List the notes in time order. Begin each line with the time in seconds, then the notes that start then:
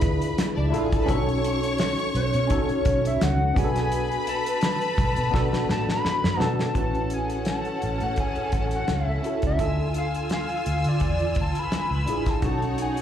Already playing: D4 E4 F4 G#4 A4 B4 B5
0.01 D2, kick, closed hi-hat
0.22 closed hi-hat
0.38 snare, closed hi-hat
0.56 C#2 D4 D5
0.65 E4 E5
0.70 A1 D4 E4 F4 A4, closed hi-hat
0.75 F4 F5
0.85 G#4 G#5
0.92 A4 A5, kick, closed hi-hat
1.02 C#4 B4 B5
1.07 B1 D#4 F#4 A4 C#5 C#6, kick, closed hi-hat
1.29 closed hi-hat
1.44 closed hi-hat
1.63 closed hi-hat
1.78 snare, closed hi-hat
1.98 closed hi-hat
2.15 B1 C#5, closed hi-hat
2.33 B2, closed hi-hat
2.47 C#4 D#4 F#4, kick, closed hi-hat
2.51 A4
2.69 muted fingered electric bass stroke, closed hi-hat
2.85 B1, kick, closed hi-hat
3.05 E5, closed hi-hat
3.21 C#2 F#5, snare, closed hi-hat
3.55 B1 B3 D4 F#4 G#4 B4 G#5 B5, kick, closed hi-hat
3.64 A4
3.76 snare, closed hi-hat
3.92 closed hi-hat
4.12 closed hi-hat
4.27 A5, closed hi-hat
4.46 closed hi-hat
4.61 snare, closed hi-hat
4.81 closed hi-hat
4.98 B1, kick, closed hi-hat
5.16 B2, closed hi-hat
5.31 B2 B3 D4 F#4 A4, kick, snare
5.53 snare
5.69 A2 A5, snare
5.89 B5, snare
6.05 muted fingered electric bass stroke, snare
6.24 F#2, snare
6.37 B2 B3 D4 F#4 A5, snare
6.42 A4
6.59 A5, snare
6.74 A1 C#4 E4 F#4 A4 B4 F#5, kick, closed hi-hat
6.95 closed hi-hat
7.10 G#5, closed hi-hat
7.30 closed hi-hat
7.45 A5, snare, closed hi-hat
7.65 closed hi-hat
7.82 A1, closed hi-hat
8.00 A2 F#5, closed hi-hat
8.16 kick, closed hi-hat
8.20 G#5
8.36 muted fingered electric bass stroke, closed hi-hat
8.52 A1, kick, closed hi-hat
8.71 closed hi-hat
8.76 F#5
8.88 C#2 E5, snare, closed hi-hat
9.23 C#4 E4 F#4 A4, closed hi-hat
9.42 C#2, kick, closed hi-hat
9.47 E5
9.57 D2 D4 F4 A4 G#5 E6, kick, closed hi-hat
9.94 F5, closed hi-hat
10.14 closed hi-hat
10.29 F5, snare, closed hi-hat
10.49 closed hi-hat
10.66 D2, closed hi-hat
10.84 D3, closed hi-hat
10.89 D5
11.00 E2, kick, closed hi-hat
11.19 closed hi-hat
11.35 D2, kick, closed hi-hat
11.41 A5
11.55 B5, closed hi-hat
11.72 snare, closed hi-hat
11.91 C#2
12.06 A1 D4 E4 F4 G#4, closed hi-hat
12.26 A5, kick, snare, closed hi-hat
12.42 B1 C#4 D#4 F#4 A4 C#5 F#5, kick, closed hi-hat
12.62 closed hi-hat
12.78 G#5, closed hi-hat
12.97 closed hi-hat